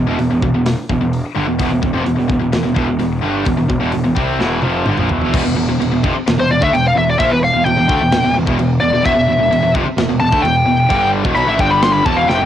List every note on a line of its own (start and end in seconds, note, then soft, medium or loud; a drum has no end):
0.07 0.18 E1 medium
0.07 0.17 E2 medium
0.07 0.17 B2 loud
0.18 0.30 E1 medium
0.18 0.30 E2 medium
0.18 0.30 B2 medium
0.18 open hi-hat medium
0.31 0.42 E1 medium
0.31 0.42 E2 medium
0.31 0.42 B2 medium
0.42 0.53 E1 medium
0.42 0.53 E2 medium
0.42 0.54 B2 medium
0.42 kick medium
0.55 0.76 E1 medium
0.55 0.73 E2 medium
0.55 0.73 B2 medium
0.66 snare loud
0.66 open hi-hat medium
0.90 1.00 E1 medium
0.90 1.00 E2 medium
0.90 1.00 B2 medium
0.90 kick medium
1.01 1.23 E1 medium
1.01 1.20 E2 medium
1.01 1.20 B2 medium
1.13 open hi-hat medium
1.35 1.47 G1 loud
1.35 1.47 G2 medium
1.35 1.47 D3 loud
1.47 1.59 E1 medium
1.47 1.58 E2 medium
1.47 1.59 B2 medium
1.59 1.71 E1 loud
1.59 1.69 E2 loud
1.59 1.70 B2 loud
1.59 kick loud
1.59 open hi-hat medium
1.70 1.82 E1 medium
1.70 1.81 E2 medium
1.70 1.81 B2 medium
1.82 1.94 E1 medium
1.82 1.93 E2 medium
1.82 1.94 B2 medium
1.82 kick medium
1.93 2.05 F1 medium
1.93 2.04 F2 loud
1.93 2.04 C3 loud
2.04 2.17 E1 medium
2.04 2.15 E2 medium
2.04 2.15 B2 medium
2.04 open hi-hat medium
2.16 2.29 E1 medium
2.16 2.27 E2 medium
2.16 2.27 B2 medium
2.28 2.40 E1 medium
2.28 2.38 E2 medium
2.28 2.39 B2 medium
2.28 kick medium
2.39 2.52 E1 medium
2.39 2.51 E2 medium
2.39 2.52 B2 medium
2.52 2.64 E1 medium
2.52 2.62 E2 medium
2.52 2.63 B2 medium
2.52 snare loud
2.52 open hi-hat medium
2.63 2.76 E1 medium
2.63 2.73 E2 medium
2.63 2.74 B2 medium
2.74 2.88 E1 loud
2.74 2.86 E2 loud
2.74 2.87 B2 loud
2.74 kick medium
2.87 3.00 E1 medium
2.87 2.98 E2 medium
2.87 2.98 B2 medium
2.99 3.22 E1 medium
2.99 3.18 E2 medium
2.99 3.19 B2 medium
2.99 open hi-hat medium
3.21 3.45 G1 medium
3.21 3.44 G2 medium
3.21 3.45 D3 medium
3.21 3.46 G3 loud
3.45 3.57 E1 medium
3.45 3.56 E2 medium
3.45 3.56 B2 medium
3.45 kick loud
3.45 open hi-hat medium
3.57 3.69 E1 medium
3.57 3.68 E2 medium
3.57 3.68 B2 medium
3.69 3.81 E1 medium
3.69 3.79 E2 medium
3.69 3.79 B2 medium
3.69 kick medium
3.80 3.94 E1 medium
3.80 3.91 E2 medium
3.80 3.91 B2 medium
3.92 4.06 E1 medium
3.92 4.02 E2 medium
3.92 4.03 B2 medium
3.92 open hi-hat medium
4.04 4.16 E1 medium
4.04 4.16 E2 medium
4.04 4.14 B2 medium
4.15 4.39 C2 medium
4.15 4.39 C3 medium
4.15 4.39 G3 medium
4.15 4.40 C4 medium
4.15 kick medium
4.38 4.62 E1 medium
4.38 4.62 E2 medium
4.38 4.63 B2 medium
4.38 4.63 E3 loud
4.38 snare medium
4.62 4.86 F1 loud
4.62 4.86 F2 medium
4.62 4.86 C3 loud
4.62 4.86 F3 medium
4.62 high tom medium
4.86 4.98 G1 loud
4.86 4.98 G2 medium
4.86 4.98 D3 medium
4.86 mid tom medium
4.97 5.10 A#1 medium
4.97 5.10 A#2 medium
4.97 5.10 F3 medium
4.97 mid tom medium
5.09 5.33 E1 medium
5.09 5.31 E2 medium
5.09 5.32 B2 medium
5.09 5.34 E3 loud
5.09 floor tom loud
5.21 floor tom medium
5.32 5.45 E1 medium
5.32 5.44 E2 loud
5.32 5.44 B2 loud
5.32 kick loud
5.32 crash loud
5.32 crash medium
5.45 5.56 E1 medium
5.45 5.55 E2 medium
5.45 5.55 B2 medium
5.56 5.68 E1 medium
5.56 5.67 E2 medium
5.56 5.67 B2 medium
5.69 5.80 E1 medium
5.69 5.79 E2 medium
5.69 5.79 B2 medium
5.80 5.92 E1 medium
5.80 5.90 E2 medium
5.80 5.91 B2 medium
5.80 crash medium
5.92 6.03 E1 medium
5.92 6.03 E2 medium
5.92 6.04 B2 medium
6.03 6.15 F1 medium
6.03 6.13 F2 medium
6.03 6.15 C3 loud
6.03 kick loud
6.14 muted distorted electric guitar stroke medium
6.14 muted picked electric bass stroke soft
6.27 6.38 E1 medium
6.27 6.37 E2 medium
6.27 6.38 B2 medium
6.27 snare loud
6.27 crash medium
6.38 6.49 E1 medium
6.38 6.49 E2 medium
6.38 6.49 B2 medium
6.38 6.51 C5 medium
6.50 6.61 E1 medium
6.50 6.62 E2 medium
6.50 6.61 B2 medium
6.50 6.62 D5 medium
6.61 6.73 D2 loud
6.61 6.72 D3 medium
6.61 6.73 A3 loud
6.61 6.74 E5 medium
6.61 kick loud
6.72 6.95 E1 medium
6.72 6.91 E2 medium
6.72 6.92 B2 medium
6.72 6.85 G5 medium
6.72 crash medium
6.88 6.97 F5 loud
6.95 7.19 E1 medium
6.95 7.15 E2 medium
6.95 7.15 B2 medium
6.95 7.09 E5 medium
7.10 7.19 D5 medium
7.18 7.31 A#1 loud
7.18 7.29 A#2 loud
7.18 7.31 F3 loud
7.18 7.31 E5 loud
7.18 kick loud
7.18 crash medium
7.29 7.53 E1 medium
7.29 7.49 E2 medium
7.29 7.49 B2 medium
7.29 7.38 B4 loud
7.44 7.64 F5 medium
7.53 7.65 E1 medium
7.53 7.64 E2 medium
7.53 7.65 B2 medium
7.64 7.76 E1 medium
7.64 7.76 E2 medium
7.64 7.76 B2 medium
7.64 8.35 G5 loud
7.64 crash medium
7.77 7.88 E1 medium
7.77 7.89 E2 medium
7.77 7.87 B2 medium
7.88 8.00 D2 medium
7.88 8.00 D3 loud
7.88 8.00 A3 loud
7.88 kick loud
8.00 8.12 E1 medium
8.00 8.10 E2 medium
8.00 8.11 B2 medium
8.12 8.23 E1 medium
8.12 8.23 E2 medium
8.12 8.23 B2 medium
8.12 snare loud
8.12 crash medium
8.24 8.36 E1 medium
8.24 8.33 E2 medium
8.24 8.33 B2 medium
8.34 8.47 E1 medium
8.34 8.45 E2 medium
8.34 8.46 B2 medium
8.46 8.58 E1 medium
8.46 8.57 E2 medium
8.46 8.58 B2 loud
8.46 kick loud
8.58 8.81 E1 medium
8.58 8.77 E2 medium
8.58 8.77 B2 medium
8.58 crash medium
8.80 8.93 E1 medium
8.80 8.92 E2 medium
8.80 8.92 B2 medium
8.80 9.04 D5 loud
8.93 9.05 E1 medium
8.93 9.03 E2 medium
8.93 9.04 B2 medium
9.04 9.16 E1 loud
9.04 9.14 E2 loud
9.04 9.15 B2 loud
9.04 9.71 E5 medium
9.04 kick loud
9.04 crash medium
9.15 9.28 E1 medium
9.15 9.25 E2 medium
9.15 9.25 B2 medium
9.26 9.39 E1 medium
9.26 9.37 E2 medium
9.26 9.38 B2 medium
9.39 9.51 E1 medium
9.39 9.50 E2 medium
9.39 9.50 B2 medium
9.51 9.62 E1 medium
9.51 9.61 E2 medium
9.51 9.62 B2 medium
9.51 crash medium
9.62 9.74 E1 medium
9.62 9.73 E2 medium
9.62 9.74 B2 medium
9.74 9.85 F1 medium
9.74 9.85 F2 loud
9.74 9.86 C3 loud
9.74 kick loud
9.86 muted picked electric bass stroke soft
9.86 muted distorted electric guitar stroke medium
9.97 10.08 E1 medium
9.97 10.08 E2 medium
9.97 10.08 B2 medium
9.97 snare loud
9.97 crash medium
10.09 10.20 E1 medium
10.09 10.19 E2 medium
10.09 10.19 B2 medium
10.20 10.32 E1 medium
10.20 10.32 E2 medium
10.20 10.31 B2 medium
10.20 10.42 A5 loud
10.32 10.43 D2 medium
10.32 10.43 D3 medium
10.32 10.44 A3 loud
10.32 kick loud
10.43 10.65 E1 medium
10.43 10.62 E2 medium
10.43 10.62 B2 medium
10.43 11.09 G5 medium
10.43 crash medium
10.66 10.88 E1 medium
10.66 10.85 E2 medium
10.66 10.85 B2 medium
10.89 11.23 G1 medium
10.89 11.23 G2 loud
10.89 11.24 D3 loud
10.89 11.24 G3 loud
10.89 kick loud
10.89 crash medium
11.24 11.35 E1 medium
11.24 11.35 E2 loud
11.24 11.35 B2 loud
11.24 kick loud
11.35 11.47 B1 loud
11.35 11.47 B2 loud
11.35 11.47 F#3 loud
11.35 11.47 B5 medium
11.35 crash medium
11.48 11.59 A1 medium
11.48 11.59 A2 medium
11.48 11.60 E3 loud
11.48 11.59 E5 medium
11.59 12.02 G1 loud
11.59 12.05 G2 medium
11.59 12.05 D3 medium
11.59 12.06 G3 loud
11.59 11.71 G5 medium
11.59 kick loud
11.71 11.82 B5 medium
11.82 11.92 C6 medium
11.82 snare loud
11.82 crash medium
11.92 12.05 B5 medium
12.03 12.28 E1 loud
12.03 12.26 E2 medium
12.03 12.17 A5 loud
12.03 kick loud
12.07 12.29 E2 loud
12.07 12.29 B2 loud
12.07 12.29 E3 loud
12.17 12.28 F5 medium
12.29 12.40 F1 loud
12.29 12.40 F2 medium
12.29 12.40 C3 loud
12.29 12.43 G5 medium
12.29 snare medium
12.41 12.46 E1 loud
12.41 12.46 E2 medium
12.41 12.46 B2 loud